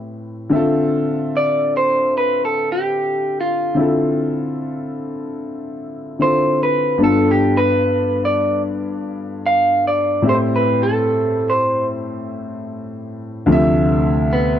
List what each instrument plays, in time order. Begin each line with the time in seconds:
Already playing: grand piano A2 C4 E4 G4 B4
0.49 grand piano D3 C4 E5
0.54 grand piano F4 A4
1.37 clean electric guitar D5
1.77 clean electric guitar C5
2.18 clean electric guitar B4
2.45 clean electric guitar A4
2.72 clean electric guitar G4
3.41 clean electric guitar F4
3.74 grand piano D3 C4 E4
3.79 grand piano F4 A4
6.19 grand piano D3 C4 E4 F4 A4, clean electric guitar C5
6.63 clean electric guitar B4
6.98 grand piano G2 B3 D4
7.02 grand piano F4 A4, clean electric guitar A4
7.31 clean electric guitar G4
7.57 clean electric guitar B4
8.25 clean electric guitar D5
9.46 clean electric guitar F5
9.87 clean electric guitar D5
10.22 grand piano A2 C4 E4
10.27 grand piano G4 A4, clean electric guitar C5
10.35 grand piano C5
10.56 clean electric guitar B4
10.83 clean electric guitar A4
11.50 clean electric guitar C5
13.46 grand piano D2 F3 A3
13.51 grand piano C3 E5
14.33 clean electric guitar B3